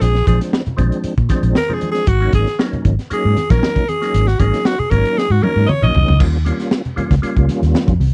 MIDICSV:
0, 0, Header, 1, 6, 480
1, 0, Start_track
1, 0, Tempo, 515021
1, 16, Time_signature, 4, 2, 24, 8
1, 7585, End_track
2, 0, Start_track
2, 0, Title_t, "Alto saxophone"
2, 0, Program_c, 0, 65
2, 15, Note_on_c, 0, 68, 100
2, 256, Note_off_c, 0, 68, 0
2, 260, Note_on_c, 0, 68, 73
2, 367, Note_off_c, 0, 68, 0
2, 1468, Note_on_c, 0, 70, 113
2, 1619, Note_on_c, 0, 68, 93
2, 1633, Note_off_c, 0, 70, 0
2, 1779, Note_off_c, 0, 68, 0
2, 1784, Note_on_c, 0, 68, 98
2, 1940, Note_on_c, 0, 66, 100
2, 1954, Note_off_c, 0, 68, 0
2, 2179, Note_off_c, 0, 66, 0
2, 2187, Note_on_c, 0, 68, 86
2, 2407, Note_off_c, 0, 68, 0
2, 2918, Note_on_c, 0, 68, 97
2, 3271, Note_on_c, 0, 70, 102
2, 3285, Note_off_c, 0, 68, 0
2, 3626, Note_on_c, 0, 68, 97
2, 3640, Note_off_c, 0, 70, 0
2, 3984, Note_on_c, 0, 66, 85
2, 3998, Note_off_c, 0, 68, 0
2, 4094, Note_on_c, 0, 68, 89
2, 4108, Note_off_c, 0, 66, 0
2, 4342, Note_on_c, 0, 66, 97
2, 4356, Note_off_c, 0, 68, 0
2, 4465, Note_on_c, 0, 68, 98
2, 4479, Note_off_c, 0, 66, 0
2, 4573, Note_on_c, 0, 70, 111
2, 4587, Note_off_c, 0, 68, 0
2, 4831, Note_on_c, 0, 68, 113
2, 4845, Note_off_c, 0, 70, 0
2, 4950, Note_on_c, 0, 66, 95
2, 4964, Note_off_c, 0, 68, 0
2, 5061, Note_on_c, 0, 70, 98
2, 5075, Note_off_c, 0, 66, 0
2, 5279, Note_on_c, 0, 75, 88
2, 5293, Note_off_c, 0, 70, 0
2, 5302, Note_on_c, 0, 73, 107
2, 5316, Note_off_c, 0, 75, 0
2, 5435, Note_on_c, 0, 75, 108
2, 5449, Note_off_c, 0, 73, 0
2, 5784, Note_off_c, 0, 75, 0
2, 7585, End_track
3, 0, Start_track
3, 0, Title_t, "Tonewheel organ"
3, 0, Program_c, 1, 16
3, 0, Note_on_c, 1, 53, 75
3, 0, Note_on_c, 1, 56, 65
3, 0, Note_on_c, 1, 60, 67
3, 0, Note_on_c, 1, 62, 81
3, 145, Note_off_c, 1, 53, 0
3, 148, Note_off_c, 1, 56, 0
3, 151, Note_off_c, 1, 60, 0
3, 152, Note_off_c, 1, 62, 0
3, 239, Note_on_c, 1, 53, 70
3, 247, Note_on_c, 1, 56, 66
3, 251, Note_on_c, 1, 60, 67
3, 251, Note_on_c, 1, 62, 83
3, 584, Note_off_c, 1, 53, 0
3, 588, Note_off_c, 1, 56, 0
3, 590, Note_off_c, 1, 60, 0
3, 590, Note_off_c, 1, 62, 0
3, 715, Note_on_c, 1, 53, 87
3, 720, Note_on_c, 1, 56, 92
3, 724, Note_on_c, 1, 60, 94
3, 731, Note_on_c, 1, 62, 104
3, 1062, Note_off_c, 1, 53, 0
3, 1065, Note_off_c, 1, 56, 0
3, 1067, Note_off_c, 1, 60, 0
3, 1070, Note_off_c, 1, 62, 0
3, 1202, Note_on_c, 1, 53, 92
3, 1204, Note_on_c, 1, 56, 86
3, 1215, Note_on_c, 1, 60, 98
3, 1216, Note_on_c, 1, 62, 106
3, 1459, Note_off_c, 1, 53, 0
3, 1459, Note_off_c, 1, 56, 0
3, 1465, Note_off_c, 1, 60, 0
3, 1465, Note_off_c, 1, 62, 0
3, 1576, Note_on_c, 1, 53, 78
3, 1580, Note_on_c, 1, 56, 79
3, 1586, Note_on_c, 1, 60, 73
3, 1588, Note_on_c, 1, 62, 90
3, 1906, Note_off_c, 1, 53, 0
3, 1908, Note_off_c, 1, 56, 0
3, 1911, Note_off_c, 1, 60, 0
3, 1912, Note_off_c, 1, 62, 0
3, 2055, Note_on_c, 1, 54, 79
3, 2060, Note_on_c, 1, 58, 72
3, 2065, Note_on_c, 1, 61, 66
3, 2068, Note_on_c, 1, 63, 84
3, 2308, Note_off_c, 1, 54, 0
3, 2310, Note_off_c, 1, 58, 0
3, 2313, Note_off_c, 1, 61, 0
3, 2314, Note_off_c, 1, 63, 0
3, 2410, Note_on_c, 1, 54, 77
3, 2411, Note_on_c, 1, 58, 68
3, 2414, Note_on_c, 1, 61, 70
3, 2420, Note_on_c, 1, 63, 88
3, 2751, Note_off_c, 1, 54, 0
3, 2751, Note_off_c, 1, 58, 0
3, 2753, Note_off_c, 1, 61, 0
3, 2756, Note_off_c, 1, 63, 0
3, 2892, Note_on_c, 1, 54, 81
3, 2893, Note_on_c, 1, 58, 82
3, 2897, Note_on_c, 1, 61, 76
3, 2901, Note_on_c, 1, 63, 90
3, 3144, Note_off_c, 1, 54, 0
3, 3145, Note_off_c, 1, 58, 0
3, 3146, Note_off_c, 1, 61, 0
3, 3148, Note_off_c, 1, 63, 0
3, 3261, Note_on_c, 1, 54, 88
3, 3266, Note_on_c, 1, 58, 77
3, 3271, Note_on_c, 1, 61, 84
3, 3274, Note_on_c, 1, 63, 95
3, 3589, Note_off_c, 1, 54, 0
3, 3591, Note_off_c, 1, 58, 0
3, 3594, Note_off_c, 1, 61, 0
3, 3596, Note_off_c, 1, 63, 0
3, 3740, Note_on_c, 1, 54, 77
3, 3745, Note_on_c, 1, 58, 68
3, 3745, Note_on_c, 1, 61, 66
3, 3754, Note_on_c, 1, 63, 85
3, 3991, Note_off_c, 1, 54, 0
3, 3993, Note_off_c, 1, 58, 0
3, 3993, Note_off_c, 1, 61, 0
3, 3998, Note_off_c, 1, 63, 0
3, 4098, Note_on_c, 1, 54, 77
3, 4102, Note_on_c, 1, 58, 71
3, 4102, Note_on_c, 1, 61, 73
3, 4106, Note_on_c, 1, 63, 85
3, 4435, Note_off_c, 1, 54, 0
3, 4437, Note_off_c, 1, 58, 0
3, 4437, Note_off_c, 1, 61, 0
3, 4439, Note_off_c, 1, 63, 0
3, 4571, Note_on_c, 1, 54, 83
3, 4573, Note_on_c, 1, 58, 73
3, 4578, Note_on_c, 1, 61, 75
3, 4586, Note_on_c, 1, 63, 95
3, 4911, Note_off_c, 1, 54, 0
3, 4912, Note_off_c, 1, 58, 0
3, 4915, Note_off_c, 1, 61, 0
3, 4919, Note_off_c, 1, 63, 0
3, 5055, Note_on_c, 1, 54, 83
3, 5058, Note_on_c, 1, 58, 73
3, 5063, Note_on_c, 1, 61, 75
3, 5067, Note_on_c, 1, 63, 91
3, 5306, Note_off_c, 1, 54, 0
3, 5307, Note_off_c, 1, 58, 0
3, 5310, Note_off_c, 1, 61, 0
3, 5312, Note_off_c, 1, 63, 0
3, 5423, Note_on_c, 1, 54, 87
3, 5424, Note_on_c, 1, 58, 74
3, 5427, Note_on_c, 1, 61, 72
3, 5435, Note_on_c, 1, 63, 94
3, 5750, Note_off_c, 1, 54, 0
3, 5750, Note_off_c, 1, 58, 0
3, 5752, Note_off_c, 1, 61, 0
3, 5756, Note_off_c, 1, 63, 0
3, 5766, Note_on_c, 1, 55, 73
3, 5772, Note_on_c, 1, 61, 70
3, 5774, Note_on_c, 1, 58, 70
3, 5782, Note_on_c, 1, 65, 87
3, 5943, Note_off_c, 1, 55, 0
3, 5946, Note_off_c, 1, 58, 0
3, 5946, Note_off_c, 1, 61, 0
3, 5950, Note_off_c, 1, 65, 0
3, 6010, Note_on_c, 1, 55, 92
3, 6018, Note_on_c, 1, 58, 87
3, 6023, Note_on_c, 1, 61, 82
3, 6028, Note_on_c, 1, 65, 102
3, 6350, Note_off_c, 1, 55, 0
3, 6355, Note_off_c, 1, 58, 0
3, 6357, Note_off_c, 1, 61, 0
3, 6360, Note_off_c, 1, 65, 0
3, 6489, Note_on_c, 1, 55, 102
3, 6494, Note_on_c, 1, 58, 90
3, 6499, Note_on_c, 1, 61, 95
3, 6499, Note_on_c, 1, 65, 104
3, 6664, Note_off_c, 1, 55, 0
3, 6667, Note_off_c, 1, 58, 0
3, 6669, Note_off_c, 1, 61, 0
3, 6669, Note_off_c, 1, 65, 0
3, 6731, Note_on_c, 1, 55, 109
3, 6731, Note_on_c, 1, 58, 97
3, 6737, Note_on_c, 1, 61, 99
3, 6740, Note_on_c, 1, 65, 120
3, 7399, Note_off_c, 1, 55, 0
3, 7399, Note_off_c, 1, 58, 0
3, 7403, Note_off_c, 1, 61, 0
3, 7404, Note_off_c, 1, 65, 0
3, 7585, End_track
4, 0, Start_track
4, 0, Title_t, "Fingered electric bass"
4, 0, Program_c, 2, 33
4, 14, Note_on_c, 2, 34, 109
4, 195, Note_off_c, 2, 34, 0
4, 255, Note_on_c, 2, 34, 100
4, 351, Note_off_c, 2, 34, 0
4, 736, Note_on_c, 2, 34, 104
4, 832, Note_off_c, 2, 34, 0
4, 1096, Note_on_c, 2, 46, 88
4, 1184, Note_off_c, 2, 46, 0
4, 1332, Note_on_c, 2, 34, 89
4, 1422, Note_off_c, 2, 34, 0
4, 1934, Note_on_c, 2, 32, 107
4, 2116, Note_off_c, 2, 32, 0
4, 2173, Note_on_c, 2, 32, 97
4, 2271, Note_off_c, 2, 32, 0
4, 2657, Note_on_c, 2, 32, 100
4, 2753, Note_off_c, 2, 32, 0
4, 3031, Note_on_c, 2, 44, 100
4, 3114, Note_off_c, 2, 44, 0
4, 3265, Note_on_c, 2, 34, 101
4, 3351, Note_off_c, 2, 34, 0
4, 3862, Note_on_c, 2, 32, 104
4, 4041, Note_off_c, 2, 32, 0
4, 4100, Note_on_c, 2, 32, 109
4, 4195, Note_off_c, 2, 32, 0
4, 4582, Note_on_c, 2, 32, 100
4, 4677, Note_off_c, 2, 32, 0
4, 4942, Note_on_c, 2, 44, 95
4, 5029, Note_off_c, 2, 44, 0
4, 5182, Note_on_c, 2, 44, 94
4, 5269, Note_off_c, 2, 44, 0
4, 5428, Note_on_c, 2, 34, 83
4, 5512, Note_off_c, 2, 34, 0
4, 5546, Note_on_c, 2, 36, 102
4, 5639, Note_off_c, 2, 36, 0
4, 5674, Note_on_c, 2, 37, 98
4, 5756, Note_off_c, 2, 37, 0
4, 5783, Note_on_c, 2, 39, 102
4, 6058, Note_off_c, 2, 39, 0
4, 6624, Note_on_c, 2, 37, 89
4, 6709, Note_off_c, 2, 37, 0
4, 6867, Note_on_c, 2, 37, 81
4, 6952, Note_off_c, 2, 37, 0
4, 7107, Note_on_c, 2, 39, 92
4, 7191, Note_off_c, 2, 39, 0
4, 7344, Note_on_c, 2, 41, 74
4, 7430, Note_off_c, 2, 41, 0
4, 7455, Note_on_c, 2, 36, 105
4, 7552, Note_off_c, 2, 36, 0
4, 7585, End_track
5, 0, Start_track
5, 0, Title_t, "Muted fingered electric bass strokes"
5, 621, Note_on_c, 9, 29, 48
5, 715, Note_off_c, 9, 29, 0
5, 970, Note_on_c, 9, 29, 44
5, 1063, Note_off_c, 9, 29, 0
5, 2544, Note_on_c, 9, 29, 50
5, 2637, Note_off_c, 9, 29, 0
5, 2901, Note_on_c, 9, 29, 51
5, 2995, Note_off_c, 9, 29, 0
5, 4470, Note_on_c, 9, 29, 51
5, 4563, Note_off_c, 9, 29, 0
5, 6506, Note_on_c, 9, 29, 52
5, 6599, Note_off_c, 9, 29, 0
5, 7585, End_track
6, 0, Start_track
6, 0, Title_t, "Drums"
6, 13, Note_on_c, 9, 42, 94
6, 21, Note_on_c, 9, 62, 40
6, 106, Note_off_c, 9, 42, 0
6, 114, Note_off_c, 9, 62, 0
6, 141, Note_on_c, 9, 38, 33
6, 234, Note_off_c, 9, 38, 0
6, 249, Note_on_c, 9, 42, 69
6, 253, Note_on_c, 9, 36, 81
6, 263, Note_on_c, 9, 62, 38
6, 263, Note_on_c, 9, 63, 82
6, 343, Note_off_c, 9, 42, 0
6, 346, Note_off_c, 9, 36, 0
6, 356, Note_off_c, 9, 62, 0
6, 356, Note_off_c, 9, 63, 0
6, 383, Note_on_c, 9, 42, 62
6, 387, Note_on_c, 9, 38, 34
6, 476, Note_off_c, 9, 42, 0
6, 480, Note_off_c, 9, 38, 0
6, 496, Note_on_c, 9, 38, 119
6, 500, Note_on_c, 9, 62, 36
6, 589, Note_off_c, 9, 38, 0
6, 594, Note_off_c, 9, 62, 0
6, 615, Note_on_c, 9, 42, 37
6, 631, Note_on_c, 9, 64, 80
6, 708, Note_off_c, 9, 42, 0
6, 724, Note_off_c, 9, 64, 0
6, 728, Note_on_c, 9, 42, 63
6, 732, Note_on_c, 9, 36, 79
6, 740, Note_on_c, 9, 62, 38
6, 740, Note_on_c, 9, 63, 85
6, 740, Note_on_c, 9, 64, 75
6, 821, Note_off_c, 9, 42, 0
6, 825, Note_off_c, 9, 36, 0
6, 833, Note_off_c, 9, 62, 0
6, 833, Note_off_c, 9, 63, 0
6, 833, Note_off_c, 9, 64, 0
6, 858, Note_on_c, 9, 42, 50
6, 951, Note_off_c, 9, 42, 0
6, 966, Note_on_c, 9, 42, 86
6, 982, Note_on_c, 9, 62, 36
6, 1059, Note_off_c, 9, 42, 0
6, 1075, Note_off_c, 9, 62, 0
6, 1094, Note_on_c, 9, 42, 31
6, 1097, Note_on_c, 9, 36, 78
6, 1188, Note_off_c, 9, 42, 0
6, 1190, Note_off_c, 9, 36, 0
6, 1204, Note_on_c, 9, 42, 76
6, 1206, Note_on_c, 9, 38, 34
6, 1210, Note_on_c, 9, 36, 92
6, 1220, Note_on_c, 9, 62, 38
6, 1220, Note_on_c, 9, 63, 76
6, 1297, Note_off_c, 9, 42, 0
6, 1300, Note_off_c, 9, 38, 0
6, 1303, Note_off_c, 9, 36, 0
6, 1314, Note_off_c, 9, 62, 0
6, 1314, Note_off_c, 9, 63, 0
6, 1332, Note_on_c, 9, 42, 58
6, 1345, Note_on_c, 9, 63, 49
6, 1426, Note_off_c, 9, 42, 0
6, 1439, Note_off_c, 9, 63, 0
6, 1447, Note_on_c, 9, 38, 118
6, 1462, Note_on_c, 9, 62, 40
6, 1462, Note_on_c, 9, 63, 94
6, 1540, Note_off_c, 9, 38, 0
6, 1555, Note_off_c, 9, 62, 0
6, 1555, Note_off_c, 9, 63, 0
6, 1581, Note_on_c, 9, 64, 79
6, 1674, Note_off_c, 9, 64, 0
6, 1687, Note_on_c, 9, 42, 69
6, 1702, Note_on_c, 9, 62, 36
6, 1702, Note_on_c, 9, 63, 74
6, 1780, Note_off_c, 9, 42, 0
6, 1795, Note_off_c, 9, 62, 0
6, 1795, Note_off_c, 9, 63, 0
6, 1814, Note_on_c, 9, 42, 56
6, 1815, Note_on_c, 9, 38, 35
6, 1907, Note_off_c, 9, 42, 0
6, 1908, Note_off_c, 9, 38, 0
6, 1925, Note_on_c, 9, 42, 88
6, 1932, Note_on_c, 9, 36, 126
6, 2019, Note_off_c, 9, 42, 0
6, 2025, Note_off_c, 9, 36, 0
6, 2060, Note_on_c, 9, 42, 29
6, 2153, Note_off_c, 9, 42, 0
6, 2167, Note_on_c, 9, 42, 80
6, 2173, Note_on_c, 9, 36, 85
6, 2181, Note_on_c, 9, 62, 39
6, 2181, Note_on_c, 9, 63, 79
6, 2260, Note_off_c, 9, 42, 0
6, 2266, Note_off_c, 9, 36, 0
6, 2275, Note_off_c, 9, 62, 0
6, 2275, Note_off_c, 9, 63, 0
6, 2303, Note_on_c, 9, 42, 56
6, 2307, Note_on_c, 9, 38, 39
6, 2396, Note_off_c, 9, 42, 0
6, 2400, Note_off_c, 9, 38, 0
6, 2417, Note_on_c, 9, 38, 120
6, 2423, Note_on_c, 9, 62, 36
6, 2510, Note_off_c, 9, 38, 0
6, 2517, Note_off_c, 9, 62, 0
6, 2545, Note_on_c, 9, 42, 35
6, 2555, Note_on_c, 9, 64, 80
6, 2638, Note_off_c, 9, 42, 0
6, 2649, Note_off_c, 9, 64, 0
6, 2654, Note_on_c, 9, 42, 61
6, 2656, Note_on_c, 9, 36, 91
6, 2664, Note_on_c, 9, 62, 39
6, 2664, Note_on_c, 9, 63, 75
6, 2664, Note_on_c, 9, 64, 90
6, 2747, Note_off_c, 9, 42, 0
6, 2749, Note_off_c, 9, 36, 0
6, 2758, Note_off_c, 9, 62, 0
6, 2758, Note_off_c, 9, 63, 0
6, 2758, Note_off_c, 9, 64, 0
6, 2786, Note_on_c, 9, 42, 44
6, 2788, Note_on_c, 9, 38, 35
6, 2879, Note_off_c, 9, 42, 0
6, 2881, Note_off_c, 9, 38, 0
6, 2895, Note_on_c, 9, 42, 91
6, 2988, Note_off_c, 9, 42, 0
6, 3137, Note_on_c, 9, 42, 70
6, 3140, Note_on_c, 9, 38, 37
6, 3143, Note_on_c, 9, 62, 41
6, 3143, Note_on_c, 9, 63, 84
6, 3231, Note_off_c, 9, 42, 0
6, 3233, Note_off_c, 9, 38, 0
6, 3236, Note_off_c, 9, 62, 0
6, 3236, Note_off_c, 9, 63, 0
6, 3263, Note_on_c, 9, 42, 55
6, 3264, Note_on_c, 9, 63, 51
6, 3265, Note_on_c, 9, 36, 108
6, 3265, Note_on_c, 9, 38, 44
6, 3356, Note_off_c, 9, 42, 0
6, 3357, Note_off_c, 9, 63, 0
6, 3358, Note_off_c, 9, 36, 0
6, 3359, Note_off_c, 9, 38, 0
6, 3379, Note_on_c, 9, 63, 81
6, 3383, Note_on_c, 9, 38, 127
6, 3472, Note_off_c, 9, 63, 0
6, 3476, Note_off_c, 9, 38, 0
6, 3502, Note_on_c, 9, 64, 72
6, 3505, Note_on_c, 9, 36, 94
6, 3505, Note_on_c, 9, 42, 35
6, 3595, Note_off_c, 9, 64, 0
6, 3598, Note_off_c, 9, 36, 0
6, 3598, Note_off_c, 9, 42, 0
6, 3621, Note_on_c, 9, 42, 78
6, 3626, Note_on_c, 9, 63, 77
6, 3715, Note_off_c, 9, 42, 0
6, 3719, Note_off_c, 9, 63, 0
6, 3749, Note_on_c, 9, 42, 56
6, 3750, Note_on_c, 9, 38, 32
6, 3842, Note_off_c, 9, 42, 0
6, 3843, Note_off_c, 9, 38, 0
6, 3861, Note_on_c, 9, 42, 98
6, 3869, Note_on_c, 9, 62, 39
6, 3954, Note_off_c, 9, 42, 0
6, 3962, Note_off_c, 9, 62, 0
6, 3986, Note_on_c, 9, 42, 36
6, 3988, Note_on_c, 9, 38, 34
6, 4079, Note_off_c, 9, 42, 0
6, 4081, Note_off_c, 9, 38, 0
6, 4095, Note_on_c, 9, 42, 76
6, 4097, Note_on_c, 9, 36, 82
6, 4109, Note_on_c, 9, 62, 42
6, 4109, Note_on_c, 9, 63, 81
6, 4188, Note_off_c, 9, 42, 0
6, 4191, Note_off_c, 9, 36, 0
6, 4202, Note_off_c, 9, 62, 0
6, 4202, Note_off_c, 9, 63, 0
6, 4228, Note_on_c, 9, 42, 56
6, 4231, Note_on_c, 9, 38, 38
6, 4321, Note_off_c, 9, 42, 0
6, 4325, Note_off_c, 9, 38, 0
6, 4335, Note_on_c, 9, 38, 121
6, 4428, Note_off_c, 9, 38, 0
6, 4466, Note_on_c, 9, 42, 39
6, 4471, Note_on_c, 9, 64, 71
6, 4559, Note_off_c, 9, 42, 0
6, 4564, Note_off_c, 9, 64, 0
6, 4575, Note_on_c, 9, 62, 40
6, 4575, Note_on_c, 9, 63, 83
6, 4575, Note_on_c, 9, 64, 83
6, 4579, Note_on_c, 9, 42, 60
6, 4580, Note_on_c, 9, 36, 89
6, 4668, Note_off_c, 9, 62, 0
6, 4668, Note_off_c, 9, 63, 0
6, 4668, Note_off_c, 9, 64, 0
6, 4672, Note_off_c, 9, 42, 0
6, 4673, Note_off_c, 9, 36, 0
6, 4708, Note_on_c, 9, 42, 49
6, 4802, Note_off_c, 9, 42, 0
6, 4827, Note_on_c, 9, 38, 52
6, 4920, Note_off_c, 9, 38, 0
6, 5055, Note_on_c, 9, 63, 81
6, 5065, Note_on_c, 9, 48, 72
6, 5149, Note_off_c, 9, 63, 0
6, 5158, Note_off_c, 9, 48, 0
6, 5184, Note_on_c, 9, 63, 53
6, 5277, Note_off_c, 9, 63, 0
6, 5305, Note_on_c, 9, 47, 94
6, 5305, Note_on_c, 9, 62, 44
6, 5305, Note_on_c, 9, 63, 87
6, 5398, Note_off_c, 9, 47, 0
6, 5398, Note_off_c, 9, 62, 0
6, 5398, Note_off_c, 9, 63, 0
6, 5430, Note_on_c, 9, 45, 77
6, 5430, Note_on_c, 9, 64, 78
6, 5523, Note_off_c, 9, 45, 0
6, 5523, Note_off_c, 9, 64, 0
6, 5543, Note_on_c, 9, 43, 100
6, 5550, Note_on_c, 9, 63, 84
6, 5637, Note_off_c, 9, 43, 0
6, 5643, Note_off_c, 9, 63, 0
6, 5669, Note_on_c, 9, 43, 93
6, 5763, Note_off_c, 9, 43, 0
6, 5781, Note_on_c, 9, 36, 121
6, 5781, Note_on_c, 9, 49, 103
6, 5786, Note_on_c, 9, 62, 37
6, 5874, Note_off_c, 9, 36, 0
6, 5874, Note_off_c, 9, 49, 0
6, 5880, Note_off_c, 9, 62, 0
6, 6020, Note_on_c, 9, 42, 76
6, 6025, Note_on_c, 9, 62, 37
6, 6025, Note_on_c, 9, 63, 84
6, 6113, Note_off_c, 9, 42, 0
6, 6118, Note_off_c, 9, 62, 0
6, 6118, Note_off_c, 9, 63, 0
6, 6148, Note_on_c, 9, 42, 64
6, 6151, Note_on_c, 9, 38, 33
6, 6241, Note_off_c, 9, 42, 0
6, 6245, Note_off_c, 9, 38, 0
6, 6256, Note_on_c, 9, 38, 125
6, 6349, Note_off_c, 9, 38, 0
6, 6384, Note_on_c, 9, 42, 39
6, 6391, Note_on_c, 9, 64, 80
6, 6477, Note_off_c, 9, 42, 0
6, 6484, Note_off_c, 9, 64, 0
6, 6501, Note_on_c, 9, 42, 62
6, 6502, Note_on_c, 9, 63, 89
6, 6502, Note_on_c, 9, 64, 75
6, 6594, Note_off_c, 9, 42, 0
6, 6595, Note_off_c, 9, 63, 0
6, 6595, Note_off_c, 9, 64, 0
6, 6625, Note_on_c, 9, 36, 91
6, 6629, Note_on_c, 9, 42, 50
6, 6631, Note_on_c, 9, 38, 34
6, 6718, Note_off_c, 9, 36, 0
6, 6723, Note_off_c, 9, 42, 0
6, 6724, Note_off_c, 9, 38, 0
6, 6739, Note_on_c, 9, 42, 86
6, 6832, Note_off_c, 9, 42, 0
6, 6865, Note_on_c, 9, 36, 90
6, 6866, Note_on_c, 9, 42, 34
6, 6958, Note_off_c, 9, 36, 0
6, 6959, Note_off_c, 9, 42, 0
6, 6976, Note_on_c, 9, 63, 78
6, 6979, Note_on_c, 9, 42, 73
6, 6982, Note_on_c, 9, 38, 40
6, 7069, Note_off_c, 9, 63, 0
6, 7073, Note_off_c, 9, 42, 0
6, 7075, Note_off_c, 9, 38, 0
6, 7095, Note_on_c, 9, 63, 55
6, 7109, Note_on_c, 9, 42, 55
6, 7111, Note_on_c, 9, 38, 39
6, 7188, Note_off_c, 9, 63, 0
6, 7202, Note_off_c, 9, 42, 0
6, 7204, Note_off_c, 9, 38, 0
6, 7215, Note_on_c, 9, 62, 43
6, 7215, Note_on_c, 9, 63, 91
6, 7222, Note_on_c, 9, 38, 127
6, 7309, Note_off_c, 9, 62, 0
6, 7309, Note_off_c, 9, 63, 0
6, 7315, Note_off_c, 9, 38, 0
6, 7336, Note_on_c, 9, 64, 83
6, 7342, Note_on_c, 9, 42, 38
6, 7343, Note_on_c, 9, 36, 86
6, 7429, Note_off_c, 9, 64, 0
6, 7436, Note_off_c, 9, 42, 0
6, 7437, Note_off_c, 9, 36, 0
6, 7457, Note_on_c, 9, 62, 38
6, 7457, Note_on_c, 9, 63, 81
6, 7462, Note_on_c, 9, 46, 79
6, 7550, Note_off_c, 9, 62, 0
6, 7550, Note_off_c, 9, 63, 0
6, 7555, Note_off_c, 9, 46, 0
6, 7585, End_track
0, 0, End_of_file